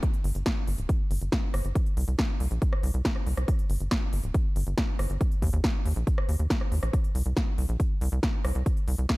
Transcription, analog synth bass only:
0.24 G1
0.35 G1
0.68 G1
0.78 D1
1.11 G1
1.22 G1
1.54 G1
1.65 G1
1.97 C2
2.08 C2
2.40 C2
2.51 A#1
2.83 C2
2.94 C2
3.27 C2
3.37 C2
3.70 G1
3.81 G1
4.13 G1
4.24 D1
4.56 G1
4.67 G1
4.99 G1
5.10 G1
5.42 D#2
5.53 D#2
5.86 D#2
5.96 A#1
6.29 D#2
6.39 D#2
6.72 D#2
6.83 A#1
7.15 C2
7.26 C2
7.58 C2
7.69 A#1
8.01 C2
8.12 C2
8.45 C2
8.55 C2
8.88 C2
8.98 C2

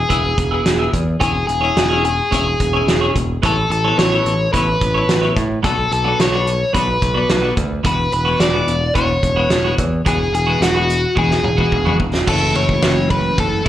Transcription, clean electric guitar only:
0.09 B3 E4 G#4 E5
0.24 muted clean electric guitar stroke
0.51 B3 E4 G#4 E5
0.79 B3 E4 G#4 E5
0.93 muted clean electric guitar stroke
1.20 C#4 E4 G#4 C#5
1.34 muted clean electric guitar stroke
1.61 C#4 E4 G#4 C#5
1.89 C#4 E4 G#4 C#5
2.31 C#4 E4 G#4 C#5
2.46 muted clean electric guitar stroke
2.73 C#4 E4 G#4 C#5
3.01 C#4 E4 G#4 C#5
3.16 muted clean electric guitar stroke
3.42 B3 E4 A4 C#5
3.57 muted clean electric guitar stroke
3.84 B3 E4 A4 C#5
4.12 B3 E4 A4 C#5
4.53 B3 E4 A4 C#5
4.67 muted clean electric guitar stroke
4.94 B3 E4 A4 C#5
5.22 B3 E4 A4 C#5
5.35 muted clean electric guitar stroke
5.63 F#3 B3 D4 F#4
5.77 muted clean electric guitar stroke
6.04 F#3 B3 D4 F#4
6.32 F#3 B3 D4 F#4
6.73 F#3 B3 D4 F#4
6.88 muted clean electric guitar stroke
7.14 F#3 B3 D4 F#4
7.42 F#3 B3 D4 F#4
7.56 muted clean electric guitar stroke
7.83 E3 G#3 B3 F#4
7.98 muted clean electric guitar stroke
8.25 E3 G#3 B3 F#4
8.53 E3 G#3 B3 F#4
8.95 E3 G#3 B3 F#4
9.09 muted clean electric guitar stroke
9.36 E3 G#3 B3 F#4
9.64 E3 G#3 B3 F#4
9.78 muted clean electric guitar stroke
10.05 E3 G#3 B3 F#4
10.20 muted clean electric guitar stroke
10.47 E3 G#3 B3 F#4
10.74 E3 G#3 B3 F#4
11.15 E3 G#3 B3 F#4
11.30 muted clean electric guitar stroke
11.57 E3 G#3 B3 F#4
11.85 E3 G#3 B3 F#4
11.99 muted clean electric guitar stroke
12.26 F#2 C#3 E3 A3 E4
13.65 E4

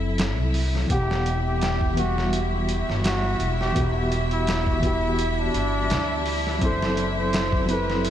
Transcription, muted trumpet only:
0.91 G4
1.47 G4
1.99 F#4
3.05 F#4
3.60 G4
4.32 E4
4.85 E4
5.39 D4
6.63 C5
7.18 C5
7.70 B4

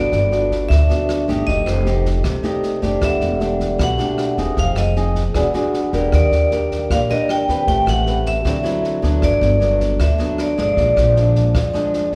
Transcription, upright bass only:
Already playing: G1
0.12 G1
0.70 D2
1.28 G1
1.47 F1
1.66 F1
2.25 C2
2.83 F1
3.02 E1
3.21 E1
3.79 B1
4.38 E1
4.57 F1
4.76 F1
5.34 E1
5.93 E1
6.12 D#2
6.31 D#2
6.90 A#1
7.48 D#2
7.68 A1
7.86 A1
8.45 D2
9.03 D2
9.22 G1
9.41 G1
10.00 D2
10.58 G1
10.77 A#1
10.97 A#1
11.55 F2

